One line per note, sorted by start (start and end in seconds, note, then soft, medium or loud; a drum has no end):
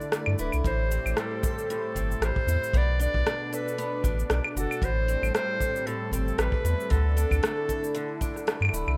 0.00 0.65 D3 medium
0.00 0.71 D3 medium
0.00 0.13 A3 medium
0.00 4.83 A3 medium
0.00 0.71 D4 medium
0.00 1.49 E4 medium
0.00 1.21 A4 medium
0.00 1.49 D5 medium
0.00 shaker soft
0.12 1.18 A3 medium
0.12 cross-stick loud
0.12 shaker soft
0.26 0.35 G2 loud
0.26 claves medium
0.39 0.49 D1 medium
0.39 2.48 E4 medium
0.39 0.52 B4 medium
0.39 shaker medium
0.52 0.61 C2 medium
0.52 claves medium
0.52 shaker soft
0.64 0.99 A1 medium
0.64 2.74 A2 medium
0.64 1.69 A2 medium
0.64 1.14 C5 loud
0.64 kick loud
0.64 shaker soft
0.76 2.74 G4 medium
0.84 2.74 C5 medium
0.91 1.95 C4 medium
0.91 shaker medium
1.05 1.14 A1 medium
1.05 claves medium
1.05 shaker soft
1.17 2.21 G3 medium
1.17 1.67 A4 medium
1.17 cross-stick loud
1.17 shaker soft
1.43 3.52 A4 medium
1.43 kick loud
1.43 shaker medium
1.58 shaker soft
1.70 2.80 A2 medium
1.70 2.25 A4 loud
1.70 shaker soft
1.95 2.15 G1 medium
1.95 2.80 C4 medium
1.95 kick medium
1.95 shaker medium
2.11 shaker soft
2.21 2.31 A1 medium
2.21 2.74 G3 medium
2.21 2.78 C5 loud
2.21 cross-stick medium
2.21 shaker soft
2.36 kick loud
2.46 2.57 E2 medium
2.46 2.80 E4 medium
2.46 shaker medium
2.64 shaker soft
2.73 3.07 B1 loud
2.73 4.83 B2 medium
2.73 3.77 B3 medium
2.73 3.01 D5 loud
2.73 kick loud
2.73 shaker soft
3.00 3.25 D4 medium
3.00 3.56 D5 loud
3.00 shaker medium
3.14 3.23 B1 medium
3.14 5.66 D4 medium
3.14 kick loud
3.26 4.03 D4 medium
3.26 cross-stick loud
3.26 shaker soft
3.32 5.55 D5 medium
3.53 5.37 A4 medium
3.53 4.31 B4 medium
3.53 shaker medium
3.68 shaker soft
3.78 4.88 B3 medium
3.78 shaker soft
4.04 4.23 A1 medium
4.04 4.29 D4 medium
4.04 kick loud
4.04 shaker medium
4.19 shaker soft
4.30 4.40 B1 medium
4.30 4.88 D4 medium
4.30 cross-stick loud
4.30 shaker soft
4.44 claves medium
4.56 4.66 F#1 medium
4.56 4.88 F#4 medium
4.56 4.86 A4 loud
4.56 shaker medium
4.71 claves medium
4.71 shaker soft
4.82 5.16 A1 medium
4.82 6.91 A2 medium
4.82 5.86 A2 medium
4.82 5.34 C5 loud
4.82 kick loud
4.82 shaker soft
5.01 7.75 C4 medium
5.01 8.97 A4 medium
5.07 6.91 G3 medium
5.07 6.11 C4 medium
5.07 shaker medium
5.22 5.31 A1 medium
5.22 claves medium
5.22 shaker soft
5.34 6.37 G3 medium
5.34 5.88 C5 loud
5.34 cross-stick loud
5.34 shaker soft
5.60 7.68 A4 medium
5.60 kick medium
5.60 shaker medium
5.76 shaker soft
5.87 6.97 A2 medium
5.87 6.12 A4 loud
5.87 shaker soft
6.11 6.32 G1 medium
6.11 6.97 C4 medium
6.11 6.40 A4 loud
6.11 kick medium
6.11 shaker medium
6.28 shaker soft
6.38 6.49 A1 medium
6.38 6.97 G3 medium
6.38 6.92 B4 loud
6.38 cross-stick loud
6.38 shaker soft
6.52 kick loud
6.64 6.75 E2 medium
6.64 7.20 E4 medium
6.64 shaker medium
6.80 shaker soft
6.90 7.25 D2 loud
6.90 7.93 D3 medium
6.90 8.97 D3 medium
6.90 8.47 A4 loud
6.90 kick loud
6.90 shaker soft
6.99 8.97 D4 medium
7.17 8.20 D4 medium
7.17 shaker medium
7.26 8.97 E4 medium
7.31 7.40 D2 medium
7.31 kick medium
7.31 claves medium
7.31 shaker soft
7.43 8.47 A3 medium
7.43 cross-stick loud
7.43 shaker soft
7.69 8.97 A4 medium
7.69 kick medium
7.69 shaker medium
7.84 shaker soft
7.95 8.97 D3 medium
7.95 shaker soft
8.21 8.97 D4 medium
8.21 kick medium
8.21 shaker medium
8.36 cross-stick soft
8.36 shaker soft
8.47 8.97 A3 medium
8.47 cross-stick loud
8.47 shaker soft
8.61 8.70 G2 loud
8.61 claves medium
8.65 claves medium
8.69 8.83 D1 medium
8.69 claves medium
8.74 8.97 E4 medium
8.74 shaker medium
8.87 8.96 C2 medium
8.87 claves medium